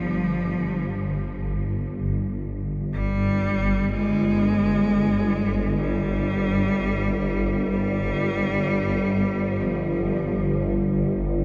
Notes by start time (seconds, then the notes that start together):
Already playing: G1 F3 G4
2.93 G3
3.89 G#3
5.79 G3
7.69 G3
9.60 F3